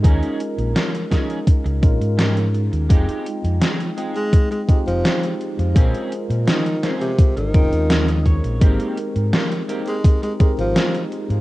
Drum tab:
HH |xxxxxxxxxxxxxxxx|xxxxxxxxxxxxxxxx|xxxxxxxxxxxxxxxx|xxxxxxxxxxxxxxxx|
SD |----o-o-----o---|----o-------o---|----o-o-----o---|----o-------o---|
BD |o-----o-o-o-----|o-------o-o-----|o-------o-o---o-|o-------o-o-----|